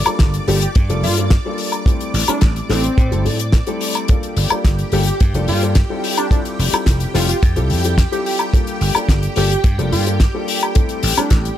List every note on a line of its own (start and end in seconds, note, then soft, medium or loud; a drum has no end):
0.00 4.10 D5 medium
0.00 4.10 D6 medium
0.06 0.44 G3 medium
0.06 0.44 A#3 medium
0.06 0.45 D4 medium
0.06 0.45 F4 medium
0.06 0.45 A4 medium
0.06 muted slap bass stroke soft
0.06 closed hi-hat medium
0.06 high woodblock medium
0.19 0.37 G1 loud
0.19 kick loud
0.19 snare loud
0.19 closed hi-hat medium
0.34 closed hi-hat medium
0.47 0.65 G1 loud
0.47 0.58 G3 loud
0.47 0.58 A#3 medium
0.47 0.58 D4 medium
0.47 0.58 F4 medium
0.47 0.57 G4 medium
0.47 0.59 A4 loud
0.47 open hi-hat loud
0.61 0.71 G4 medium
0.61 closed hi-hat medium
0.75 0.91 G2 medium
0.75 kick loud
0.75 closed hi-hat medium
0.89 1.05 F1 medium
0.89 1.14 G3 loud
0.89 1.14 A#3 medium
0.89 1.14 D4 medium
0.89 1.14 F4 medium
0.89 1.14 A4 loud
0.89 closed hi-hat medium
1.03 1.36 G2 medium
1.03 1.17 F4 medium
1.03 open hi-hat loud
1.17 1.28 G3 medium
1.17 1.28 A#3 medium
1.17 1.28 D4 medium
1.17 1.28 F4 medium
1.17 1.28 A4 medium
1.17 closed hi-hat medium
1.30 kick loud
1.30 snare loud
1.30 closed hi-hat medium
1.45 1.83 G3 medium
1.45 1.83 A#3 medium
1.45 1.84 D4 medium
1.45 1.84 F4 medium
1.45 1.84 A4 loud
1.58 open hi-hat loud
1.72 closed hi-hat medium
1.72 high woodblock medium
1.86 2.25 G3 medium
1.86 2.25 A3 medium
1.86 2.25 C4 medium
1.86 2.25 E4 medium
1.86 2.25 A4 loud
1.86 kick loud
1.86 closed hi-hat medium
2.01 closed hi-hat medium
2.14 2.28 A1 loud
2.14 open hi-hat loud
2.28 2.67 G3 medium
2.28 2.67 A3 medium
2.28 2.67 C4 medium
2.28 2.42 D4 loud
2.28 2.67 E4 medium
2.28 2.67 A4 medium
2.28 muted slap bass stroke soft
2.28 closed hi-hat medium
2.28 high woodblock medium
2.41 2.59 A1 medium
2.41 kick loud
2.41 snare loud
2.41 closed hi-hat medium
2.56 closed hi-hat soft
2.69 2.87 A1 medium
2.69 2.80 G3 loud
2.69 2.80 A3 medium
2.69 2.80 C4 medium
2.69 3.26 C4 loud
2.69 2.81 E4 medium
2.69 2.81 A4 loud
2.69 snare medium
2.69 open hi-hat loud
2.84 closed hi-hat medium
2.98 3.13 A2 medium
2.98 kick loud
2.98 closed hi-hat medium
3.11 3.27 G1 medium
3.11 3.23 G3 loud
3.11 3.23 A3 medium
3.11 3.23 C4 medium
3.11 3.23 E4 medium
3.11 3.23 A4 loud
3.11 closed hi-hat soft
3.25 3.59 A2 loud
3.25 3.36 G3 medium
3.25 3.36 A3 medium
3.25 3.36 C4 medium
3.25 3.36 E4 medium
3.25 3.36 A4 medium
3.25 open hi-hat loud
3.39 closed hi-hat medium
3.52 kick loud
3.52 snare loud
3.52 closed hi-hat medium
3.67 4.05 G3 loud
3.67 4.05 A3 medium
3.67 4.06 C4 medium
3.67 4.06 E4 medium
3.67 4.06 A4 loud
3.67 closed hi-hat medium
3.81 open hi-hat loud
3.95 closed hi-hat medium
3.95 high woodblock medium
4.08 4.47 G3 medium
4.08 4.47 A#3 medium
4.08 4.48 D4 medium
4.08 4.48 F4 medium
4.08 11.58 G4 medium
4.08 4.48 A4 loud
4.08 11.58 G5 medium
4.08 kick loud
4.08 closed hi-hat medium
4.23 closed hi-hat medium
4.37 4.50 G1 loud
4.37 open hi-hat loud
4.50 4.89 G3 medium
4.50 4.89 A#3 medium
4.50 4.89 D4 medium
4.50 4.89 F4 medium
4.50 4.90 A4 medium
4.50 muted slap bass stroke soft
4.50 closed hi-hat medium
4.50 high woodblock medium
4.64 4.82 G1 medium
4.64 kick loud
4.64 snare loud
4.64 closed hi-hat loud
4.79 closed hi-hat medium
4.92 5.09 G1 loud
4.92 5.03 G3 loud
4.92 5.03 A#3 medium
4.92 5.03 D4 medium
4.92 5.03 F4 medium
4.92 5.01 G4 medium
4.92 5.03 A4 loud
4.92 open hi-hat loud
5.07 5.15 G4 medium
5.07 closed hi-hat medium
5.20 5.36 G2 medium
5.20 kick loud
5.20 closed hi-hat medium
5.34 5.50 F1 medium
5.34 5.58 G3 loud
5.34 5.59 A#3 medium
5.34 5.59 D4 medium
5.34 5.59 F4 medium
5.34 5.59 A4 loud
5.34 closed hi-hat medium
5.48 5.81 G2 medium
5.48 5.62 F4 medium
5.48 open hi-hat loud
5.62 5.72 G3 medium
5.62 5.72 A#3 medium
5.62 5.73 D4 medium
5.62 5.73 F4 medium
5.62 5.73 A4 medium
5.62 closed hi-hat medium
5.75 kick loud
5.75 snare loud
5.75 closed hi-hat medium
5.89 6.28 G3 medium
5.89 6.28 C4 medium
5.89 6.28 E4 medium
5.89 6.28 F4 medium
5.89 6.28 A4 medium
6.04 open hi-hat loud
6.17 6.26 D4 medium
6.17 closed hi-hat medium
6.17 high woodblock medium
6.30 6.69 G3 medium
6.30 6.69 C4 medium
6.30 6.40 D4 medium
6.30 6.69 E4 medium
6.30 6.70 F4 medium
6.30 6.70 A4 loud
6.30 kick loud
6.30 closed hi-hat medium
6.45 closed hi-hat soft
6.59 6.72 F1 loud
6.59 open hi-hat loud
6.72 7.11 G3 medium
6.72 7.11 C4 medium
6.72 7.11 E4 medium
6.72 7.11 F4 medium
6.72 7.12 A4 medium
6.72 muted slap bass stroke soft
6.72 closed hi-hat medium
6.72 high woodblock medium
6.86 7.04 F1 loud
6.86 kick loud
6.86 snare loud
6.86 closed hi-hat medium
7.00 closed hi-hat medium
7.14 7.32 F1 medium
7.14 7.25 G3 loud
7.14 7.25 C4 medium
7.14 7.25 E4 medium
7.14 7.25 F4 medium
7.14 7.24 F4 medium
7.14 7.25 A4 loud
7.14 snare medium
7.14 open hi-hat loud
7.29 7.37 F4 medium
7.29 closed hi-hat medium
7.43 7.58 F2 medium
7.43 kick loud
7.43 closed hi-hat medium
7.56 7.72 C2 medium
7.56 7.80 G3 medium
7.56 7.81 C4 medium
7.56 7.81 E4 medium
7.56 7.81 F4 medium
7.56 7.81 A4 loud
7.56 closed hi-hat medium
7.70 8.03 F2 medium
7.70 open hi-hat medium
7.84 7.94 G3 medium
7.84 7.94 C4 medium
7.84 7.95 E4 medium
7.84 7.95 F4 medium
7.84 7.95 A4 medium
7.84 closed hi-hat medium
7.98 kick medium
7.98 snare loud
7.98 closed hi-hat loud
8.12 8.50 G3 medium
8.12 8.50 C4 medium
8.12 8.50 E4 medium
8.12 8.50 F4 medium
8.12 8.21 G4 medium
8.12 8.50 A4 loud
8.12 closed hi-hat medium
8.26 8.35 G4 medium
8.26 open hi-hat loud
8.39 closed hi-hat medium
8.39 high woodblock medium
8.53 8.92 G3 medium
8.53 8.92 A#3 medium
8.53 8.92 D4 medium
8.53 8.92 F4 medium
8.53 8.92 A4 loud
8.53 kick loud
8.53 closed hi-hat medium
8.67 closed hi-hat medium
8.81 8.95 G1 loud
8.81 open hi-hat loud
8.95 9.33 G3 medium
8.95 9.33 A#3 medium
8.95 9.33 D4 medium
8.95 9.33 F4 medium
8.95 9.34 A4 medium
8.95 muted slap bass stroke soft
8.95 closed hi-hat medium
8.95 high woodblock medium
9.09 9.26 G1 loud
9.09 kick loud
9.09 snare loud
9.09 closed hi-hat medium
9.23 closed hi-hat medium
9.36 9.54 G1 medium
9.36 9.47 G3 loud
9.36 9.47 A#3 medium
9.36 9.47 D4 medium
9.36 9.47 F4 medium
9.36 9.46 G4 medium
9.36 9.47 A4 loud
9.36 open hi-hat loud
9.51 9.60 G4 medium
9.51 closed hi-hat medium
9.64 9.80 G2 loud
9.64 kick loud
9.64 closed hi-hat medium
9.78 9.94 F1 medium
9.78 10.03 G3 loud
9.78 10.03 A#3 medium
9.78 10.03 D4 medium
9.78 10.03 F4 medium
9.78 10.03 A4 loud
9.78 closed hi-hat medium
9.92 10.25 G2 loud
9.92 10.06 F4 medium
9.92 open hi-hat loud
10.06 10.17 G3 medium
10.06 10.17 A#3 medium
10.06 10.17 D4 medium
10.06 10.17 F4 medium
10.06 10.17 A4 medium
10.06 closed hi-hat medium
10.20 kick loud
10.20 snare loud
10.20 closed hi-hat medium
10.34 10.72 G3 medium
10.34 10.72 A#3 medium
10.34 10.72 D4 medium
10.34 10.72 F4 medium
10.34 10.73 A4 medium
10.48 open hi-hat loud
10.61 closed hi-hat medium
10.61 high woodblock medium
10.75 11.14 G3 medium
10.75 11.14 A3 medium
10.75 11.14 C4 medium
10.75 11.14 E4 medium
10.75 11.14 A4 loud
10.75 kick loud
10.75 closed hi-hat loud
10.89 closed hi-hat medium
11.03 11.17 A1 loud
11.03 open hi-hat loud
11.17 11.56 G3 medium
11.17 11.56 A3 medium
11.17 11.56 C4 medium
11.17 11.31 D4 medium
11.17 11.56 E4 medium
11.17 11.56 A4 medium
11.17 muted slap bass stroke soft
11.17 closed hi-hat medium
11.17 high woodblock medium
11.30 11.48 A1 loud
11.30 kick loud
11.30 snare loud
11.30 closed hi-hat loud
11.45 closed hi-hat medium